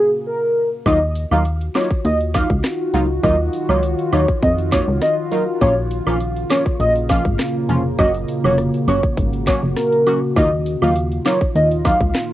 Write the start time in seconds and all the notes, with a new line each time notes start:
Already playing: G#4
0.26 A#4
0.86 D#2 D#3 F#3 A#3 D#4 F4 F#4 D#5, kick, closed hi-hat, high woodblock
1.15 closed hi-hat, cabasa
1.31 D#2 F#3 A#3 D#4 F4 F5, high woodblock
1.45 closed hi-hat
1.61 closed hi-hat
1.75 F#3 A#3 D#4 F4 C#5, snare, clap, closed hi-hat, cabasa, high woodblock
1.91 kick
2.05 D#2 D#5, closed hi-hat
2.21 closed hi-hat
2.34 F#3 A#3 D#4 F4 F5, kick, snare, closed hi-hat, cabasa, high woodblock
2.50 C#2, kick
2.64 cross-stick, snare, clap, closed hi-hat
2.94 C#2 F#3 A#3 D#4 F4, closed hi-hat, cabasa
3.23 D#2 F#3 A#3 D#4 F4 D#5, kick, closed hi-hat, high woodblock
3.53 closed hi-hat, cabasa
3.69 C#2 F#3 A#3 D#4 F4 C#5, high woodblock
3.83 closed hi-hat
3.99 closed hi-hat
4.12 D#2 F#3 A#3 D#4 F4 C#5, closed hi-hat, cabasa, high woodblock
4.28 kick
4.42 F2 D#5, kick, closed hi-hat
4.58 closed hi-hat
4.72 F#3 A#3 D#4 F4 C#5, kick, snare, clap, closed hi-hat, cabasa, high woodblock
4.88 C#2
5.02 D#5, cross-stick, snare, closed hi-hat
5.31 F#3 A#3 D#4 F4 A#4, closed hi-hat, cabasa
5.61 A#1 C#3 F3 A#3 C#4 F4 C#5, kick, closed hi-hat, high woodblock
5.91 closed hi-hat, cabasa
6.06 A#1 F3 A#3 C#4 F4 F5, high woodblock
6.20 closed hi-hat
6.36 closed hi-hat
6.50 F3 A#3 C#4 F4 C#5, snare, clap, closed hi-hat, cabasa, high woodblock
6.66 kick
6.80 A#1 D#5, closed hi-hat
6.96 closed hi-hat
7.09 F3 A#3 C#4 F4 F5, kick, snare, closed hi-hat, cabasa, high woodblock
7.25 G#1, kick
7.39 cross-stick, snare, clap, closed hi-hat
7.69 F1 F3 A#3 C#4 F4, closed hi-hat, cabasa
7.98 F#1 F#3 A#3 C#4 F#4 D#5, kick, closed hi-hat, high woodblock
8.14 closed hi-hat
8.28 closed hi-hat, cabasa
8.44 F1 F#3 A#3 C#4 F#4 C#5, high woodblock
8.58 cross-stick, closed hi-hat
8.74 closed hi-hat
8.87 F#1 F#3 A#3 C#4 F#4 C#5, closed hi-hat, cabasa, high woodblock
9.03 kick
9.18 G#1, kick, closed hi-hat
9.33 closed hi-hat
9.47 F#3 A#3 C#4 F#4 C#5, kick, snare, clap, closed hi-hat, cabasa, high woodblock
9.63 F#1
9.77 A#4, cross-stick, snare, closed hi-hat
9.93 closed hi-hat
10.06 F#3 A#3 C#4 F#4, closed hi-hat, cabasa, high woodblock
10.36 D#2 D#3 F#3 A#3 D#4 F4 D#5, kick, closed hi-hat, high woodblock
10.66 closed hi-hat, cabasa
10.82 D#2 F#3 A#3 D#4 F4 F5, high woodblock
10.96 closed hi-hat
11.12 closed hi-hat
11.25 F#3 A#3 D#4 F4 C#5, snare, clap, closed hi-hat, cabasa, high woodblock
11.41 kick
11.55 D#2 D#5, closed hi-hat
11.71 closed hi-hat
11.84 F#3 A#3 D#4 F4 F5, kick, snare, closed hi-hat, cabasa, high woodblock
12.01 C#2, kick
12.15 cross-stick, snare, clap, closed hi-hat